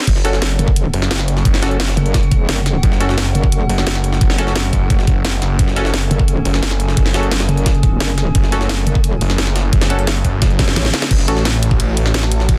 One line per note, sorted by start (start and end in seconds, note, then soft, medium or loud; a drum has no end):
0.07 0.58 F#1 medium
0.07 11.07 C#3 medium
0.07 11.07 A3 medium
0.07 5.57 F#4 medium
0.07 kick loud
0.07 closed hi-hat medium
0.07 crash medium
0.16 snare medium
0.25 0.39 C#4 medium
0.25 0.39 F#4 medium
0.25 0.39 A4 medium
0.25 snare soft
0.25 closed hi-hat medium
0.33 snare medium
0.42 snare loud
0.42 closed hi-hat medium
0.50 closed hi-hat soft
0.59 0.92 F#1 loud
0.59 closed hi-hat medium
0.68 kick loud
0.76 closed hi-hat medium
0.93 1.44 F#1 medium
0.93 closed hi-hat medium
0.93 open hi-hat medium
1.02 snare medium
1.02 snare soft
1.11 snare loud
1.11 closed hi-hat loud
1.11 closed hi-hat medium
1.19 snare medium
1.28 closed hi-hat medium
1.37 snare soft
1.45 1.96 F#1 loud
1.45 kick loud
1.45 closed hi-hat medium
1.54 snare soft
1.62 1.77 C#4 medium
1.62 1.77 F#4 medium
1.62 1.77 A4 medium
1.62 snare loud
1.62 closed hi-hat medium
1.71 closed hi-hat soft
1.80 snare loud
1.80 closed hi-hat medium
1.88 snare loud
1.88 closed hi-hat medium
1.97 2.47 F#1 loud
1.97 closed hi-hat soft
1.97 closed hi-hat medium
2.06 closed hi-hat medium
2.14 kick loud
2.14 snare loud
2.14 closed hi-hat medium
2.23 closed hi-hat soft
2.31 kick loud
2.31 closed hi-hat medium
2.49 2.82 F#1 loud
2.49 snare loud
2.49 closed hi-hat medium
2.49 closed hi-hat loud
2.66 snare soft
2.66 closed hi-hat medium
2.83 3.34 F#1 loud
2.83 kick loud
2.83 closed hi-hat medium
2.92 snare soft
3.00 3.15 C#4 medium
3.00 3.15 F#4 medium
3.00 3.15 A4 medium
3.00 snare soft
3.00 closed hi-hat medium
3.09 snare medium
3.18 snare loud
3.18 closed hi-hat medium
3.26 closed hi-hat soft
3.35 3.68 F#1 loud
3.35 closed hi-hat medium
3.44 kick loud
3.52 closed hi-hat medium
3.69 4.20 F#1 loud
3.69 closed hi-hat medium
3.69 open hi-hat medium
3.78 snare medium
3.78 snare soft
3.87 snare loud
3.87 closed hi-hat medium
3.87 closed hi-hat loud
3.95 snare medium
4.04 closed hi-hat medium
4.13 snare soft
4.21 4.72 F#1 loud
4.21 kick loud
4.21 closed hi-hat medium
4.30 snare soft
4.38 4.53 C#4 medium
4.38 4.53 F#4 medium
4.38 4.53 A4 medium
4.38 snare soft
4.38 closed hi-hat medium
4.47 snare soft
4.56 snare loud
4.56 closed hi-hat medium
4.73 4.89 F#1 medium
4.73 kick medium
4.73 closed hi-hat medium
4.90 5.41 F#1 loud
4.90 kick loud
4.90 closed hi-hat medium
4.99 snare soft
5.07 kick loud
5.07 closed hi-hat medium
5.25 snare loud
5.25 closed hi-hat medium
5.42 5.58 F#1 loud
5.42 snare soft
5.42 closed hi-hat medium
5.59 6.09 F#1 loud
5.59 11.09 G#4 medium
5.59 kick loud
5.59 closed hi-hat medium
5.68 snare soft
5.76 5.91 C#4 medium
5.76 5.91 F#4 medium
5.76 5.91 A4 medium
5.76 snare soft
5.76 closed hi-hat medium
5.85 snare medium
5.94 snare loud
5.94 closed hi-hat medium
6.02 closed hi-hat soft
6.11 6.44 F#1 medium
6.11 closed hi-hat medium
6.19 kick loud
6.28 closed hi-hat medium
6.45 6.96 F#1 medium
6.45 closed hi-hat medium
6.45 open hi-hat medium
6.54 snare medium
6.54 snare soft
6.63 snare loud
6.63 closed hi-hat medium
6.71 snare soft
6.80 closed hi-hat medium
6.88 snare soft
6.97 7.47 F#1 loud
6.97 kick loud
6.97 closed hi-hat medium
7.06 snare soft
7.14 7.29 C#4 medium
7.14 7.29 F#4 medium
7.14 7.29 A4 medium
7.14 snare loud
7.14 closed hi-hat medium
7.23 closed hi-hat soft
7.31 snare loud
7.31 closed hi-hat medium
7.40 snare loud
7.40 closed hi-hat medium
7.49 7.99 F#1 loud
7.49 closed hi-hat medium
7.49 closed hi-hat soft
7.57 closed hi-hat medium
7.66 kick loud
7.66 snare loud
7.66 closed hi-hat medium
7.75 closed hi-hat soft
7.83 kick loud
7.83 closed hi-hat medium
8.00 8.34 F#1 loud
8.00 snare loud
8.00 closed hi-hat medium
8.00 closed hi-hat loud
8.18 snare soft
8.18 closed hi-hat medium
8.35 8.85 F#1 loud
8.35 kick loud
8.35 closed hi-hat medium
8.44 snare soft
8.52 8.67 C#4 medium
8.52 8.67 F#4 medium
8.52 8.67 A4 medium
8.52 snare soft
8.52 closed hi-hat medium
8.61 snare medium
8.69 snare loud
8.69 closed hi-hat medium
8.78 closed hi-hat soft
8.87 9.20 F#1 loud
8.87 closed hi-hat medium
8.95 kick loud
9.04 closed hi-hat medium
9.21 9.71 F#1 medium
9.21 closed hi-hat medium
9.21 open hi-hat medium
9.30 snare medium
9.30 snare soft
9.38 snare loud
9.38 closed hi-hat loud
9.38 closed hi-hat medium
9.47 snare medium
9.56 snare loud
9.56 closed hi-hat medium
9.73 10.23 F#1 loud
9.73 kick loud
9.73 closed hi-hat medium
9.81 snare soft
9.81 snare loud
9.81 snare soft
9.81 closed hi-hat medium
9.90 10.05 C#4 medium
9.90 10.05 F#4 medium
9.90 10.05 A4 medium
9.90 closed hi-hat medium
9.99 closed hi-hat medium
10.07 snare loud
10.07 closed hi-hat loud
10.25 10.75 F#1 medium
10.25 kick medium
10.25 closed hi-hat medium
10.42 kick loud
10.42 snare loud
10.42 closed hi-hat medium
10.50 closed hi-hat soft
10.59 kick loud
10.59 snare medium
10.59 closed hi-hat medium
10.68 snare medium
10.76 10.92 A1 loud
10.76 snare loud
10.76 snare medium
10.76 closed hi-hat medium
10.76 closed hi-hat loud
10.85 snare medium
10.94 snare loud
10.94 snare medium
10.94 closed hi-hat medium
11.02 snare medium
11.02 snare loud
11.02 closed hi-hat medium
11.11 11.27 F#1 loud
11.11 12.58 C#3 medium
11.11 12.58 A3 medium
11.11 12.58 F#4 loud
11.11 12.58 F#4 medium
11.11 kick loud
11.11 closed hi-hat medium
11.11 crash loud
11.11 ride bell medium
11.18 12.58 A3 medium
11.18 snare medium
11.28 12.58 A1 medium
11.28 11.43 C#4 medium
11.28 11.43 F#4 medium
11.28 11.43 A4 medium
11.28 snare soft
11.28 closed hi-hat medium
11.28 closed hi-hat loud
11.37 snare medium
11.45 12.58 C#5 medium
11.45 snare loud
11.45 closed hi-hat medium
11.45 ride bell medium
11.54 closed hi-hat soft
11.63 closed hi-hat medium
11.63 closed hi-hat loud
11.71 kick loud
11.76 12.58 A5 medium
11.76 closed hi-hat medium
11.76 ride bell medium
11.97 closed hi-hat loud
11.97 open hi-hat medium
12.06 snare medium
12.06 snare soft
12.14 snare loud
12.14 closed hi-hat medium
12.14 ride bell medium
12.23 snare medium
12.31 closed hi-hat medium
12.31 closed hi-hat loud
12.40 snare soft
12.49 kick loud
12.49 closed hi-hat medium
12.49 ride bell medium